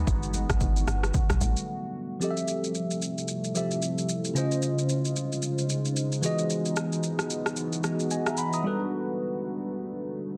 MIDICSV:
0, 0, Header, 1, 5, 480
1, 0, Start_track
1, 0, Tempo, 535714
1, 65, Time_signature, 4, 2, 24, 8
1, 9292, End_track
2, 0, Start_track
2, 0, Title_t, "Tine electric piano"
2, 0, Program_c, 0, 4
2, 1968, Note_on_c, 0, 53, 71
2, 1978, Note_on_c, 0, 60, 64
2, 1989, Note_on_c, 0, 67, 67
2, 1999, Note_on_c, 0, 69, 64
2, 2008, Note_on_c, 0, 75, 63
2, 2063, Note_off_c, 0, 75, 0
2, 2065, Note_on_c, 0, 76, 79
2, 2137, Control_c, 0, 64, 127
2, 3152, Note_off_c, 0, 53, 0
2, 3157, Note_off_c, 0, 60, 0
2, 3163, Note_off_c, 0, 67, 0
2, 3168, Note_off_c, 0, 69, 0
2, 3180, Note_on_c, 0, 53, 58
2, 3184, Note_on_c, 0, 60, 51
2, 3189, Note_off_c, 0, 76, 0
2, 3190, Note_on_c, 0, 67, 51
2, 3195, Note_on_c, 0, 69, 52
2, 3199, Note_on_c, 0, 76, 62
2, 3887, Note_on_c, 0, 49, 73
2, 3899, Note_on_c, 0, 61, 70
2, 3902, Note_off_c, 0, 53, 0
2, 3904, Note_off_c, 0, 60, 0
2, 3907, Note_off_c, 0, 67, 0
2, 3907, Note_on_c, 0, 65, 66
2, 3910, Note_off_c, 0, 69, 0
2, 3912, Note_off_c, 0, 76, 0
2, 3915, Control_c, 0, 64, 0
2, 3917, Note_on_c, 0, 72, 69
2, 3928, Note_on_c, 0, 75, 83
2, 4050, Control_c, 0, 64, 127
2, 5542, Note_off_c, 0, 49, 0
2, 5548, Note_off_c, 0, 61, 0
2, 5552, Note_off_c, 0, 65, 0
2, 5557, Note_off_c, 0, 72, 0
2, 5563, Note_off_c, 0, 75, 0
2, 5567, Note_on_c, 0, 52, 76
2, 5577, Note_on_c, 0, 59, 66
2, 5587, Note_on_c, 0, 66, 71
2, 5596, Control_c, 0, 64, 0
2, 5597, Note_on_c, 0, 68, 69
2, 5607, Note_on_c, 0, 75, 85
2, 5734, Control_c, 0, 64, 127
2, 6986, Note_off_c, 0, 52, 0
2, 6992, Note_off_c, 0, 59, 0
2, 6997, Note_off_c, 0, 66, 0
2, 7002, Note_off_c, 0, 68, 0
2, 7007, Note_off_c, 0, 75, 0
2, 7017, Note_on_c, 0, 52, 56
2, 7023, Note_on_c, 0, 59, 52
2, 7028, Note_on_c, 0, 66, 51
2, 7033, Note_on_c, 0, 68, 51
2, 7037, Note_on_c, 0, 75, 62
2, 7263, Note_off_c, 0, 75, 0
2, 7268, Note_on_c, 0, 80, 63
2, 7273, Note_on_c, 0, 75, 52
2, 7399, Note_off_c, 0, 80, 0
2, 7401, Note_off_c, 0, 75, 0
2, 7408, Note_on_c, 0, 82, 73
2, 7413, Note_on_c, 0, 76, 60
2, 7502, Note_off_c, 0, 82, 0
2, 7504, Note_off_c, 0, 76, 0
2, 7508, Note_on_c, 0, 83, 73
2, 7513, Note_on_c, 0, 78, 58
2, 7638, Note_off_c, 0, 83, 0
2, 7641, Note_off_c, 0, 78, 0
2, 7649, Note_on_c, 0, 87, 62
2, 7654, Note_on_c, 0, 82, 55
2, 7729, Note_on_c, 0, 55, 76
2, 7737, Note_off_c, 0, 66, 0
2, 7740, Note_on_c, 0, 62, 68
2, 7741, Note_off_c, 0, 52, 0
2, 7744, Note_off_c, 0, 59, 0
2, 7748, Note_on_c, 0, 66, 65
2, 7749, Note_off_c, 0, 68, 0
2, 7754, Control_c, 0, 64, 0
2, 7759, Note_on_c, 0, 69, 68
2, 7768, Note_on_c, 0, 71, 82
2, 7874, Note_off_c, 0, 87, 0
2, 7877, Note_off_c, 0, 82, 0
2, 7911, Control_c, 0, 64, 127
2, 9292, Note_off_c, 0, 55, 0
2, 9292, Note_off_c, 0, 62, 0
2, 9292, Note_off_c, 0, 66, 0
2, 9292, Note_off_c, 0, 69, 0
2, 9292, Note_off_c, 0, 71, 0
2, 9292, End_track
3, 0, Start_track
3, 0, Title_t, "Ambient pad"
3, 0, Program_c, 1, 92
3, 0, Note_on_c, 1, 59, 80
3, 63, Note_on_c, 1, 57, 81
3, 64, Note_on_c, 1, 50, 89
3, 64, Note_on_c, 1, 55, 79
3, 64, Note_on_c, 1, 66, 100
3, 1948, Note_off_c, 1, 59, 0
3, 1964, Note_off_c, 1, 57, 0
3, 1965, Note_off_c, 1, 50, 0
3, 1965, Note_off_c, 1, 55, 0
3, 1965, Note_off_c, 1, 66, 0
3, 1980, Note_on_c, 1, 48, 85
3, 1980, Note_on_c, 1, 64, 73
3, 1981, Note_on_c, 1, 55, 76
3, 1981, Note_on_c, 1, 65, 92
3, 1982, Note_on_c, 1, 57, 72
3, 3883, Note_off_c, 1, 48, 0
3, 3883, Note_off_c, 1, 55, 0
3, 3883, Note_off_c, 1, 64, 0
3, 3884, Note_off_c, 1, 57, 0
3, 3903, Note_on_c, 1, 49, 81
3, 3903, Note_on_c, 1, 56, 73
3, 3903, Note_on_c, 1, 63, 76
3, 3904, Note_on_c, 1, 72, 77
3, 5547, Note_off_c, 1, 65, 0
3, 5567, Note_off_c, 1, 49, 0
3, 5567, Note_off_c, 1, 72, 0
3, 5582, Note_on_c, 1, 59, 74
3, 5582, Note_on_c, 1, 66, 88
3, 5583, Note_on_c, 1, 52, 85
3, 7708, Note_off_c, 1, 56, 0
3, 7708, Note_off_c, 1, 63, 0
3, 7722, Note_off_c, 1, 52, 0
3, 7743, Note_on_c, 1, 50, 82
3, 7744, Note_on_c, 1, 55, 76
3, 7744, Note_on_c, 1, 57, 73
3, 9292, Note_off_c, 1, 50, 0
3, 9292, Note_off_c, 1, 55, 0
3, 9292, Note_off_c, 1, 57, 0
3, 9292, Note_off_c, 1, 59, 0
3, 9292, Note_off_c, 1, 66, 0
3, 9292, End_track
4, 0, Start_track
4, 0, Title_t, "Log drum bass"
4, 0, Program_c, 2, 39
4, 65, Note_on_c, 2, 31, 100
4, 408, Note_off_c, 2, 31, 0
4, 444, Note_on_c, 2, 31, 98
4, 752, Note_off_c, 2, 31, 0
4, 783, Note_on_c, 2, 31, 107
4, 1001, Note_off_c, 2, 31, 0
4, 1163, Note_on_c, 2, 35, 96
4, 1255, Note_off_c, 2, 35, 0
4, 1264, Note_on_c, 2, 33, 96
4, 1390, Note_off_c, 2, 33, 0
4, 9292, End_track
5, 0, Start_track
5, 0, Title_t, "Drums"
5, 65, Note_on_c, 9, 36, 127
5, 67, Note_on_c, 9, 82, 79
5, 155, Note_off_c, 9, 36, 0
5, 156, Note_off_c, 9, 82, 0
5, 205, Note_on_c, 9, 82, 56
5, 295, Note_off_c, 9, 82, 0
5, 302, Note_on_c, 9, 82, 94
5, 304, Note_on_c, 9, 63, 64
5, 391, Note_off_c, 9, 82, 0
5, 394, Note_off_c, 9, 63, 0
5, 445, Note_on_c, 9, 36, 103
5, 445, Note_on_c, 9, 37, 95
5, 446, Note_on_c, 9, 82, 54
5, 534, Note_off_c, 9, 36, 0
5, 534, Note_off_c, 9, 37, 0
5, 535, Note_off_c, 9, 82, 0
5, 541, Note_on_c, 9, 82, 68
5, 544, Note_on_c, 9, 36, 102
5, 548, Note_on_c, 9, 64, 72
5, 631, Note_off_c, 9, 82, 0
5, 634, Note_off_c, 9, 36, 0
5, 638, Note_off_c, 9, 64, 0
5, 685, Note_on_c, 9, 82, 56
5, 774, Note_off_c, 9, 82, 0
5, 785, Note_on_c, 9, 37, 91
5, 786, Note_on_c, 9, 82, 89
5, 875, Note_off_c, 9, 37, 0
5, 875, Note_off_c, 9, 82, 0
5, 926, Note_on_c, 9, 37, 91
5, 930, Note_on_c, 9, 82, 49
5, 1016, Note_off_c, 9, 37, 0
5, 1019, Note_off_c, 9, 82, 0
5, 1019, Note_on_c, 9, 82, 86
5, 1024, Note_on_c, 9, 36, 123
5, 1028, Note_on_c, 9, 64, 84
5, 1109, Note_off_c, 9, 82, 0
5, 1113, Note_off_c, 9, 36, 0
5, 1117, Note_off_c, 9, 64, 0
5, 1162, Note_on_c, 9, 37, 89
5, 1163, Note_on_c, 9, 82, 54
5, 1167, Note_on_c, 9, 63, 92
5, 1252, Note_off_c, 9, 37, 0
5, 1253, Note_off_c, 9, 82, 0
5, 1256, Note_off_c, 9, 63, 0
5, 1264, Note_on_c, 9, 82, 91
5, 1266, Note_on_c, 9, 63, 75
5, 1354, Note_off_c, 9, 82, 0
5, 1355, Note_off_c, 9, 63, 0
5, 1403, Note_on_c, 9, 82, 51
5, 1493, Note_off_c, 9, 82, 0
5, 1984, Note_on_c, 9, 82, 73
5, 2074, Note_off_c, 9, 82, 0
5, 2124, Note_on_c, 9, 82, 53
5, 2213, Note_off_c, 9, 82, 0
5, 2221, Note_on_c, 9, 82, 85
5, 2310, Note_off_c, 9, 82, 0
5, 2366, Note_on_c, 9, 82, 49
5, 2455, Note_off_c, 9, 82, 0
5, 2461, Note_on_c, 9, 82, 58
5, 2551, Note_off_c, 9, 82, 0
5, 2604, Note_on_c, 9, 82, 53
5, 2694, Note_off_c, 9, 82, 0
5, 2705, Note_on_c, 9, 82, 81
5, 2795, Note_off_c, 9, 82, 0
5, 2849, Note_on_c, 9, 82, 43
5, 2939, Note_off_c, 9, 82, 0
5, 2939, Note_on_c, 9, 82, 82
5, 3028, Note_off_c, 9, 82, 0
5, 3083, Note_on_c, 9, 82, 47
5, 3173, Note_off_c, 9, 82, 0
5, 3184, Note_on_c, 9, 82, 88
5, 3273, Note_off_c, 9, 82, 0
5, 3325, Note_on_c, 9, 82, 48
5, 3414, Note_off_c, 9, 82, 0
5, 3424, Note_on_c, 9, 82, 81
5, 3514, Note_off_c, 9, 82, 0
5, 3568, Note_on_c, 9, 82, 52
5, 3657, Note_off_c, 9, 82, 0
5, 3664, Note_on_c, 9, 82, 103
5, 3754, Note_off_c, 9, 82, 0
5, 3804, Note_on_c, 9, 82, 57
5, 3894, Note_off_c, 9, 82, 0
5, 3907, Note_on_c, 9, 82, 75
5, 3997, Note_off_c, 9, 82, 0
5, 4045, Note_on_c, 9, 82, 51
5, 4134, Note_off_c, 9, 82, 0
5, 4142, Note_on_c, 9, 82, 83
5, 4232, Note_off_c, 9, 82, 0
5, 4287, Note_on_c, 9, 82, 52
5, 4377, Note_off_c, 9, 82, 0
5, 4382, Note_on_c, 9, 82, 61
5, 4472, Note_off_c, 9, 82, 0
5, 4524, Note_on_c, 9, 82, 54
5, 4614, Note_off_c, 9, 82, 0
5, 4626, Note_on_c, 9, 82, 80
5, 4715, Note_off_c, 9, 82, 0
5, 4770, Note_on_c, 9, 82, 43
5, 4859, Note_off_c, 9, 82, 0
5, 4859, Note_on_c, 9, 82, 86
5, 4949, Note_off_c, 9, 82, 0
5, 5003, Note_on_c, 9, 82, 50
5, 5092, Note_off_c, 9, 82, 0
5, 5103, Note_on_c, 9, 82, 85
5, 5192, Note_off_c, 9, 82, 0
5, 5243, Note_on_c, 9, 82, 49
5, 5333, Note_off_c, 9, 82, 0
5, 5343, Note_on_c, 9, 82, 80
5, 5433, Note_off_c, 9, 82, 0
5, 5485, Note_on_c, 9, 82, 48
5, 5574, Note_off_c, 9, 82, 0
5, 5582, Note_on_c, 9, 82, 107
5, 5672, Note_off_c, 9, 82, 0
5, 5721, Note_on_c, 9, 82, 55
5, 5810, Note_off_c, 9, 82, 0
5, 5824, Note_on_c, 9, 82, 75
5, 5913, Note_off_c, 9, 82, 0
5, 5962, Note_on_c, 9, 82, 52
5, 6052, Note_off_c, 9, 82, 0
5, 6060, Note_on_c, 9, 82, 84
5, 6065, Note_on_c, 9, 37, 77
5, 6149, Note_off_c, 9, 82, 0
5, 6155, Note_off_c, 9, 37, 0
5, 6204, Note_on_c, 9, 82, 53
5, 6294, Note_off_c, 9, 82, 0
5, 6300, Note_on_c, 9, 82, 61
5, 6390, Note_off_c, 9, 82, 0
5, 6441, Note_on_c, 9, 37, 75
5, 6444, Note_on_c, 9, 82, 54
5, 6531, Note_off_c, 9, 37, 0
5, 6533, Note_off_c, 9, 82, 0
5, 6543, Note_on_c, 9, 82, 81
5, 6633, Note_off_c, 9, 82, 0
5, 6684, Note_on_c, 9, 37, 87
5, 6688, Note_on_c, 9, 82, 44
5, 6774, Note_off_c, 9, 37, 0
5, 6777, Note_off_c, 9, 82, 0
5, 6778, Note_on_c, 9, 82, 86
5, 6867, Note_off_c, 9, 82, 0
5, 6922, Note_on_c, 9, 82, 47
5, 7012, Note_off_c, 9, 82, 0
5, 7022, Note_on_c, 9, 82, 81
5, 7024, Note_on_c, 9, 37, 85
5, 7112, Note_off_c, 9, 82, 0
5, 7114, Note_off_c, 9, 37, 0
5, 7163, Note_on_c, 9, 82, 50
5, 7252, Note_off_c, 9, 82, 0
5, 7263, Note_on_c, 9, 82, 85
5, 7353, Note_off_c, 9, 82, 0
5, 7405, Note_on_c, 9, 37, 93
5, 7405, Note_on_c, 9, 82, 50
5, 7495, Note_off_c, 9, 37, 0
5, 7495, Note_off_c, 9, 82, 0
5, 7502, Note_on_c, 9, 82, 108
5, 7592, Note_off_c, 9, 82, 0
5, 7642, Note_on_c, 9, 82, 57
5, 7731, Note_off_c, 9, 82, 0
5, 9292, End_track
0, 0, End_of_file